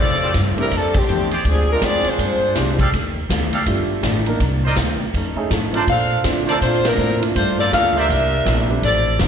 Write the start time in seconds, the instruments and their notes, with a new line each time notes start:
0.00 upright bass F2, steel-string acoustic guitar F3 A3 D4 G4, saxophone section C4 G4 A4 D5
0.21 trumpet section F4 G4 A4 D5
0.34 upright bass G2, steel-string acoustic guitar F3 A3 D4 G4, kick, snare, hi-hat pedal, ride
0.56 grand piano A3 C4 D4 G4, ride
0.60 saxophone section G3 C4 E4 A#4
0.72 upright bass F2, steel-string acoustic guitar F3 A3 D4 G4, saxophone section D4, kick, ride
0.76 saxophone section G3 C4 A4
0.94 saxophone section A3 G4, kick, ride
0.98 saxophone section D3 C4
1.08 upright bass E2, steel-string acoustic guitar F3 A3 D4 G4, hi-hat pedal
1.31 trumpet section G4 G#4 C5 D5, ride
1.44 upright bass D2, steel-string acoustic guitar A#2 G#3 D4 G4, saxophone section F3 D4, kick, ride
1.49 saxophone section C4 G#4
1.72 saxophone section G#3 D4 F4 A#4
1.80 upright bass F2, steel-string acoustic guitar A#2 G#3 D4 G4, grand piano G#3 C4 D4 G5, kick, snare, hi-hat pedal, ride
1.85 saxophone section C4 F4 G#4 D5
2.04 muted upright bass stroke, ride
2.09 saxophone section D4 F4 G#4 C5
2.18 upright bass G2, steel-string acoustic guitar A#2 G#3 D4 G4, kick, ride
2.55 upright bass C2, steel-string acoustic guitar A#2 G#3 D4 G4, grand piano G#3 C4 D4 G4, kick, snare, hi-hat pedal, ride
2.79 trumpet section G4 A4 D5 F5, kick, ride
2.93 upright bass D#2, steel-string acoustic guitar D#3 A3 D4 G4, kick, ride
3.30 upright bass D2, steel-string acoustic guitar D#3 A3 D4 G4, kick, snare, hi-hat pedal, ride
3.53 trumpet section G4 A4 D5 F5, ride
3.66 upright bass G1, steel-string acoustic guitar D#3 A3 D4 G4, grand piano A3 D4 F4 G4, kick, ride
4.02 upright bass A1, steel-string acoustic guitar D#3 A3 D4 G4, kick, snare, hi-hat pedal, ride
4.26 grand piano A#3 D4 D#4 A#4, ride
4.40 upright bass C2, steel-string acoustic guitar C3 D#3 A#3 D4, kick, ride
4.64 trumpet section A#4 C5 D5 D#5
4.76 upright bass D2, steel-string acoustic guitar C3 D#3 A#3 D4, kick, snare, hi-hat pedal, ride
5.14 upright bass F2, steel-string acoustic guitar F3 C#4 D#4 A4, kick, ride
5.36 grand piano A3 C#4 D#4 G#4, muted upright bass stroke
5.49 upright bass A2, steel-string acoustic guitar F3 C#4 D#4 A4, kick, snare, hi-hat pedal, ride
5.73 grand piano A3 C4 D4 F4, trumpet section A#4 C5 D5 A5, ride
5.87 upright bass A#2, steel-string acoustic guitar A#3 D4 A4 C5, saxophone section D4 A4 C5 F5, kick, ride
6.24 upright bass D3, grand piano A3 C4 D4 F4, steel-string acoustic guitar A#3 D4 A4 C5, kick, snare, hi-hat pedal, ride
6.47 saxophone section C4 F4 A4 D5, trumpet section A#4 C5 D5 A5, ride
6.60 upright bass A#2, saxophone section A3 D4 F4 C5, steel-string acoustic guitar A#3 D4 A4 C5, kick, ride
6.85 saxophone section F3 C4 D4 A#4, snare, ride
6.97 upright bass A2, steel-string acoustic guitar A#3 D4 A4 C5, hi-hat pedal
7.20 grand piano A3 A#3 D4 F4, ride
7.33 upright bass G2, steel-string acoustic guitar G3 A#3 F4 A4, saxophone section A3 D4 F4 C5, kick, ride
7.59 saxophone section A#3 F4 A4 D5, snare
7.72 upright bass D2, steel-string acoustic guitar G3 A#3 F4 A4, grand piano A3 A#3 D4 F4, saxophone section D4 A4 A#4 F5, kick, snare, hi-hat pedal, ride
7.96 saxophone section D4 G4 A#4 E5, trumpet section A#4 C5 D5 E5
8.08 upright bass C2, steel-string acoustic guitar C3 A#3 D4 E4, kick, ride
8.45 upright bass A#1, steel-string acoustic guitar C3 A#3 D4 E4, kick, snare, hi-hat pedal, ride
8.68 grand piano G3 A3 C4 D4
8.82 upright bass A1, steel-string acoustic guitar F3 A3 D4 G4, saxophone section C4 G4 A4 D5, kick, ride
9.19 upright bass F1, steel-string acoustic guitar F3 A3 D4 G4, grand piano G3 A3 C4 D4, kick, snare, hi-hat pedal, ride